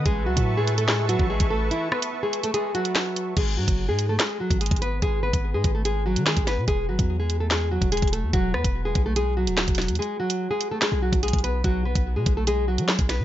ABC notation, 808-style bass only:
X:1
M:4/4
L:1/16
Q:1/4=145
K:G#phr
V:1 name="808-style bass" clef=bass
A,,,2 C,, A,,8 A,,,2 A,,,3 | z16 | G,,,2 G,, F,,,2 G,,3 z3 G,,,2 G,,,3 | G,,,3 G,,,2 G,, G,,,4- G,,, D,2 G,,,2 B,, |
E,,,2 G,,, E,,8 E,,,2 E,,,2 E,, | E,,,2 E,, E,,,3 B,,,4- B,,, D,,,2 E,,,2 E,, | z8 z B,,,2 B,,,2 B,,,3 | B,,,3 B,,,2 B,, B,,,4- B,,, F,2 B,,,2 D, |]